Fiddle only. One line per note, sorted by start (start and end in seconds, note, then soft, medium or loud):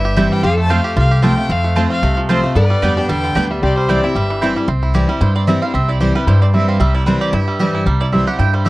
0.00 0.34 E5 medium
0.33 0.44 G5 loud
0.45 0.58 F5 loud
0.60 0.73 A5 loud
0.71 0.97 F5 loud
0.98 1.22 F5 loud
1.24 1.53 G5 loud
1.52 1.77 F5 loud
1.92 2.16 F5 loud
2.31 2.55 C5 medium
2.56 3.00 D5 loud
2.98 3.09 G5 loud
3.09 3.52 G5 loud
3.51 3.62 E5 medium
3.62 3.76 D5 medium
3.77 3.91 C5 medium
3.90 4.06 D5 medium
4.04 4.57 E5 medium